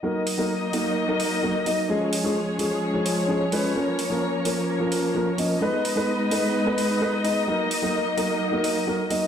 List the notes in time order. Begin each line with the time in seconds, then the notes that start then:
0.03 F#3 A#3 D#4 A#4 D#5
0.27 open hi-hat
0.38 F#3 A#3 D#4 A#4
0.73 F#3 A#3 D#4 A#4, open hi-hat
1.08 F#3 A#3 D#4 A#4
1.20 open hi-hat
1.43 F#3 A#3 D#4 A#4
1.66 F#3 A#3 D#4 D#5, open hi-hat
1.89 F3 G#3 C#4 G#4 C#5
2.13 open hi-hat
2.24 F3 G#3 C#4 G#4
2.59 F3 G#3 C#4 G#4, open hi-hat
2.94 F3 G#3 C#4 G#4
3.06 open hi-hat
3.28 F3 G#3 C#4 G#4
3.52 F3 G#3 C#4 B4, open hi-hat
3.75 F3 A#3 C#4 A#4
3.99 open hi-hat
4.10 F3 A#3 C#4 A#4
4.45 F3 A#3 C#4 A#4, open hi-hat
4.80 F3 A#3 C#4 A#4
4.92 open hi-hat
5.15 F3 A#3 C#4 A#4
5.38 F3 A#3 C#4 D#5, open hi-hat
5.61 G#3 B3 D#4 B4 D#5
5.85 open hi-hat
5.96 G#3 B3 D#4 B4
6.31 G#3 B3 D#4 B4, open hi-hat
6.66 G#3 B3 D#4 B4
6.78 open hi-hat
7.01 G#3 B3 D#4 B4
7.24 G#3 B3 D#4 D#5, open hi-hat
7.47 F#3 A#3 D#4 A#4
7.71 open hi-hat
7.82 F#3 A#3 D#4 A#4
8.17 F#3 A#3 D#4 A#4, open hi-hat
8.52 F#3 A#3 D#4 A#4
8.64 open hi-hat
8.87 F#3 A#3 D#4 A#4
9.10 F#3 A#3 D#4 D#5, open hi-hat